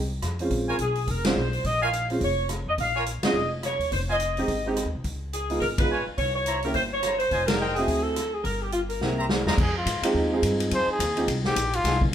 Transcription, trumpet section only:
0.68 0.76 F4 medium
0.68 0.76 A#4 medium
0.68 0.76 C#5 medium
0.68 0.76 G#5 medium
1.81 1.89 F4 medium
1.81 1.89 A#4 medium
1.81 1.89 C#5 medium
1.81 1.89 G#5 medium
2.96 3.03 F4 medium
2.96 3.03 A#4 medium
2.96 3.03 C#5 medium
2.96 3.03 G#5 medium
4.09 4.16 F4 medium
4.09 4.16 C5 medium
4.09 4.16 D#5 medium
4.09 4.16 G#5 medium
5.91 6.02 F4 medium
5.91 6.02 B4 medium
5.91 6.02 C#5 medium
5.91 6.02 G#5 medium
6.47 6.58 E4 medium
6.47 6.58 C5 medium
6.47 6.58 C#5 medium
6.47 6.58 A#5 medium
7.04 7.15 E4 medium
7.04 7.16 C5 medium
7.04 7.15 C#5 medium
7.04 7.15 A#5 medium
7.32 7.44 F4 medium
7.32 7.44 C5 medium
7.32 7.44 D#5 medium
7.32 7.44 G#5 medium
7.60 7.88 C5 medium
7.60 7.88 D#5 medium
7.60 7.88 G5 medium
9.18 9.26 G4 medium
9.18 9.26 C5 medium
9.18 9.26 E5 medium
9.18 9.26 A#5 medium
9.46 9.54 F4 medium
9.46 9.54 C5 medium
9.46 9.54 D#5 medium
9.46 9.54 A#5 medium

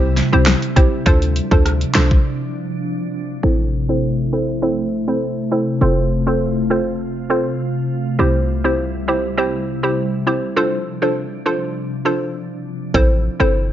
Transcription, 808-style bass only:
0.00 0.22 C2 loud
0.33 0.55 C2 medium
0.76 0.88 B1 medium
1.06 1.41 D2 loud
1.51 1.85 D2 medium
1.95 2.18 C2 loud
3.44 5.77 A1 medium
5.81 8.15 F1 medium
8.19 10.53 C2 medium
12.94 13.29 A1 loud
13.40 13.73 G1 medium

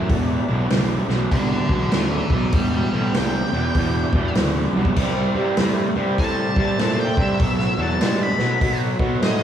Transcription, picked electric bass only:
0.00 0.11 F#2 medium
0.09 0.37 E1 medium
0.48 0.64 B1 medium
0.70 0.98 B1 medium
1.08 1.25 B1 medium
1.31 1.58 C2 medium
1.69 1.86 B1 medium
1.93 2.20 D2 medium
2.30 2.47 B1 medium
2.53 2.80 E1 medium
2.92 3.08 A1 medium
3.14 3.42 C2 medium
3.52 3.69 E2 medium
3.75 4.02 E2 medium
4.13 4.29 E2 medium
4.36 4.63 D2 medium
4.73 4.90 C2 medium
4.97 5.24 C2 medium
5.34 5.51 G2 medium
5.57 5.85 G2 medium
5.96 6.12 G2 medium
6.18 6.46 A2 medium
6.56 6.73 G2 medium
6.80 7.07 A#2 medium
7.17 7.34 G2 medium
7.40 7.67 B1 medium
7.78 7.94 E2 medium
8.00 8.27 G2 medium
8.38 8.55 B2 medium
8.61 8.88 B2 medium
8.99 9.15 B2 medium
9.21 9.43 A2 medium

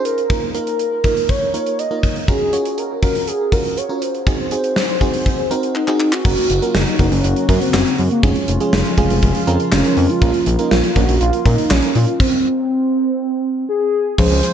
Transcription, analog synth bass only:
6.25 6.35 F#1 loud
6.50 6.60 F#1 loud
6.75 6.85 F#1 loud
6.99 7.09 F#1 loud
7.12 7.22 F#1 loud
7.24 7.34 F#1 loud
7.49 7.59 F#2 loud
7.74 7.84 F#1 loud
7.99 8.09 F#2 loud
8.23 8.33 F1 loud
8.48 8.58 F1 medium
8.73 8.83 F1 loud
8.98 9.08 F1 loud
9.10 9.20 F1 loud
9.23 9.33 F1 loud
9.47 9.57 F2 medium
9.72 9.82 F1 loud
9.97 10.07 F2 loud
10.22 10.32 A#1 loud
10.47 10.57 A#1 loud
10.71 10.81 A#1 loud
10.96 11.06 A#1 loud
11.09 11.19 A#1 loud
11.21 11.31 A#1 loud
11.46 11.56 A#2 loud
11.71 11.81 A#1 loud
11.95 12.05 A#2 loud
14.18 14.28 C#2 loud
14.31 14.41 C#2 loud

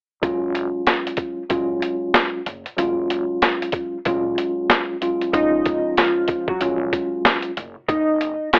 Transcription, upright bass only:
0.23 0.67 F#1 medium
1.51 1.78 A#1 medium
2.47 2.63 F#1 medium
2.79 3.23 F#1 loud
4.06 4.34 A#1 loud
5.34 5.78 F#1 loud
6.62 6.89 A#1 medium
7.58 7.74 F#1 medium
7.89 8.33 F#1 loud

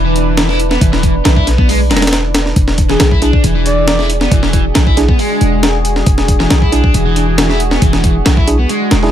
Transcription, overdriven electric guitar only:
0.05 0.37 E3 loud
0.38 0.47 E3 medium
0.49 0.59 E4 loud
0.71 0.80 B3 medium
0.81 0.92 E3 medium
0.93 1.02 E3 medium
1.03 1.14 E3 medium
1.25 1.35 E3 medium
1.36 1.46 E4 loud
1.58 1.68 B3 medium
1.69 1.79 G#3 loud
1.91 2.02 G#3 loud
2.90 3.11 E3 medium
3.12 3.22 E4 loud
3.22 3.43 D4 loud
3.44 3.54 E3 medium
3.55 3.86 E3 loud
3.88 3.97 E3 medium
3.99 4.09 E4 loud
4.21 4.31 B3 medium
4.32 4.42 E3 medium
4.43 4.53 E3 medium
4.54 4.65 E3 medium
4.76 4.86 E3 medium
4.87 4.97 E4 loud
5.09 5.18 B3 medium
5.19 5.62 G#3 loud
6.40 6.61 E3 medium
6.62 6.72 E4 loud
6.72 6.93 D4 loud
6.95 7.05 E3 medium
7.06 7.37 E3 loud
7.38 7.48 E3 medium
7.50 7.60 E4 loud
7.72 7.81 B3 medium
7.82 7.92 E3 medium
7.93 8.03 E3 medium
8.04 8.15 E3 medium
8.26 8.36 E3 medium
8.37 8.47 E4 loud
8.59 8.69 B3 medium
8.69 9.12 G#3 loud

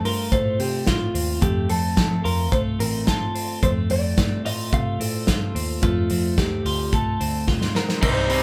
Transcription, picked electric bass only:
0.04 0.28 G2 medium
0.32 0.55 A2 medium
0.59 0.83 C3 medium
0.87 1.11 A2 medium
1.14 1.38 D#2 medium
1.42 1.66 F2 loud
1.70 1.93 F2 medium
1.97 2.21 F3 medium
2.25 2.52 F2 medium
2.52 2.76 C2 medium
2.80 3.27 A1 medium
3.63 3.86 F2 medium
3.90 4.13 F2 medium
4.18 4.45 G2 medium
4.45 4.68 A2 medium
4.73 4.96 C3 medium
4.99 5.23 A2 medium
5.28 5.51 G2 loud
5.55 5.78 D#2 medium
5.83 6.06 F2 loud
6.10 6.38 F2 medium
6.38 6.61 D#2 medium
6.65 6.93 D2 medium
6.93 7.16 C2 medium
7.21 7.67 D2 medium
8.03 8.43 C2 loud

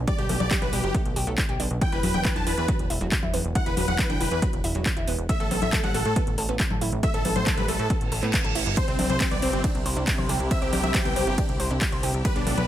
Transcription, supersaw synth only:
0.07 0.16 D5 loud
0.18 0.27 G4 medium
0.29 0.38 G4 medium
0.40 0.48 D5 medium
0.51 0.59 G4 medium
0.62 0.70 B4 medium
0.73 0.81 G4 medium
0.84 0.92 G4 medium
1.81 1.90 G5 loud
1.92 2.01 B4 medium
2.03 2.12 B4 medium
2.14 2.22 G5 medium
2.25 2.33 B4 medium
2.36 2.44 A5 loud
2.47 2.55 B4 medium
2.57 2.66 B4 medium
3.55 3.64 F#5 loud
3.66 3.75 B4 medium
3.77 3.85 B4 medium
3.88 3.96 F#5 medium
3.99 4.07 B4 medium
4.10 4.18 G5 loud
4.20 4.29 B4 medium
4.31 4.40 B4 medium
5.29 5.38 E5 loud
5.40 5.48 A4 medium
5.51 5.59 A4 medium
5.62 5.70 E5 medium
5.73 5.81 A4 medium
5.83 5.92 F#5 loud
5.94 6.03 A4 medium
6.05 6.14 A4 medium
7.03 7.11 E5 loud
7.14 7.22 A4 medium
7.25 7.33 A4 medium
7.36 7.44 C5 medium
7.47 7.55 A4 medium
7.57 7.66 B4 loud
7.68 7.77 A4 medium
7.79 7.88 A4 medium
8.77 8.85 C5 loud
8.88 8.96 C4 medium
8.99 9.07 C4 medium
9.10 9.18 C5 medium
9.21 9.29 C4 medium
9.31 9.40 D5 loud
9.42 9.51 C4 medium
9.53 9.62 C4 medium
10.51 10.59 E5 loud
10.62 10.70 G4 medium
10.73 10.81 G4 medium
10.83 10.92 E5 medium
10.94 11.03 G4 medium
11.05 11.14 G5 loud
11.16 11.24 G4 medium
11.27 11.35 G4 medium
12.25 12.33 B4 loud
12.36 12.44 D4 medium
12.47 12.55 D4 medium
12.57 12.66 B4 medium

